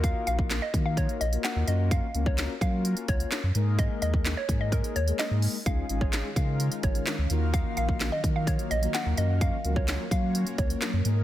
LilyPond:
<<
  \new Staff \with { instrumentName = "Synth pluck" } { \time 4/4 \key ges \lydian \tempo 4 = 128 f''8 f''8 r16 ees''16 r16 f''16 des''8 ees''16 r16 ges''16 r16 ees''16 r16 | f''16 r8 des''8 r16 f''16 r8. des''8. r8. | ees''8 ees''8 r16 des''16 r16 ees''16 bes'8 des''16 r16 ees''8. r16 | f''16 r8 des''8 r16 f''16 r8. des''8. r8. |
f''8 f''8 r16 ees''16 r16 f''16 des''8 ees''16 r16 ges''16 r16 ees''16 r16 | f''16 r8 des''8 r16 f''16 r8. des''8. r8. | }
  \new Staff \with { instrumentName = "Analog polysynth" } { \time 4/4 \key ges \lydian <bes ees' f' ges' bes'>4~ <bes ees' f' ges' bes'>16 r16 <bes ees' f' ges' bes'>4 r16 <bes ees' f' ges' bes'>8. <bes des' f' ges' bes'>8~ | <bes des' f' ges' bes'>16 r16 <bes des' f' ges' bes'>8. r16 <bes des' f' ges' bes'>4.~ <bes des' f' ges' bes'>16 r16 <aes bes ees' aes' bes'>8~ | <aes bes ees' aes' bes'>4~ <aes bes ees' aes' bes'>16 r16 <aes bes ees' aes' bes'>4 r16 <aes bes ees' aes' bes'>4 r16 | <aes des' ees' f' aes'>8 <aes des' ees' f' aes'>8. r16 <aes des' ees' f' bes'>4.~ <aes des' ees' f' bes'>16 r16 <bes ees' f' ges' bes'>8~ |
<bes ees' f' ges' bes'>4~ <bes ees' f' ges' bes'>16 r16 <bes ees' f' ges' bes'>4 r16 <bes ees' f' ges' bes'>8. <bes des' f' ges' bes'>8~ | <bes des' f' ges' bes'>16 r16 <bes des' f' ges' bes'>8. r16 <bes des' f' ges' des''>4.~ <bes des' f' ges' des''>16 r16 <aes bes ees' aes' bes'>8 | }
  \new Staff \with { instrumentName = "Ambient pad" } { \time 4/4 \key ges \lydian << { r1 | r1 | r1 | <ees f''>1~ |
<ees f''>2.~ <ees f''>8 <ges bes'>8~ | <ges bes'>2.~ <ges bes'>8 <ees aes'>8 | } \\ { r1 | r1 | r1 | des'2.~ des'8 ges8~ |
ges2.~ ges8 bes8~ | bes1 | } >> }
  \new Staff \with { instrumentName = "Sub bass" } { \clef bass \time 4/4 \key ges \lydian ees,8 bes,,4 ees4 bes,,8 r16 ees,16 ges,8~ | ges,8 des,4 ges4 des,8 r16 ges,16 aes,8~ | aes,8 ees,4 aes,4 ees,8 r16 aes,8 r16 | des,8 aes,,4 des4 aes,,8 r16 des,16 ees,8~ |
ees,8 bes,,4 ees4 bes,,8 r16 ees,16 ges,8~ | ges,8 des,4 ges4 des,8 r16 ges,16 aes,8 | }
  \new DrumStaff \with { instrumentName = "Drums" } \drummode { \time 4/4 <hh bd>8 hh16 bd16 <hc hh sn>8 <hh bd>8 <hh bd>16 hh16 hh16 hh16 <hc hh sn>8 hh8 | <hh bd>8 hh16 bd16 <hc hh sn>8 <hh bd>8 hh16 hh16 <hh bd>16 hh16 <hc hh sn>8 hh8 | <hh bd>8 hh16 bd16 <hc hh sn>8 <hh bd>8 <hh bd>16 hh16 hh16 hh16 <hc hh sn>8 hho8 | <hh bd>8 hh16 bd16 <hc hh sn>8 <hh bd>8 hh16 hh16 <hh bd>16 hh16 <hc hh sn>8 hh8 |
<hh bd>8 hh16 bd16 <hc hh sn>8 <hh bd>8 <hh bd>16 hh16 hh16 hh16 <hc hh sn>8 hh8 | <hh bd>8 hh16 bd16 <hc hh sn>8 <hh bd>8 hh16 hh16 <hh bd>16 hh16 <hc hh sn>8 hh8 | }
>>